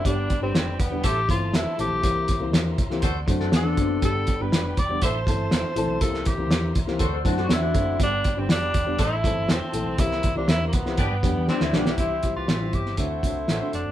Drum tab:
HH |x-x-x-x-x-x-x-x-|x-x-x-x-x-x-x-x-|x-x-x-x-x-x-x-x-|x-x-x-x-x-x-x-x-|
SD |----o-------o---|----o--o---oo---|----o-------o---|-o--o--o---oo---|
BD |o-o---o-o-o-----|o-o---o-o-o---o-|o-o---o-o-o-----|o-o---o-o-o---o-|

HH |x-x-x-x-x-x-x-x-|x-x-x-x-x-x-----|x-x-x-x-x-x-x-x-|
SD |----o-------o---|-o--o--o----oooo|----o--o----o---|
BD |o-o---o-o-o-----|o-o---o-o-o-----|o-o---o-o-o-----|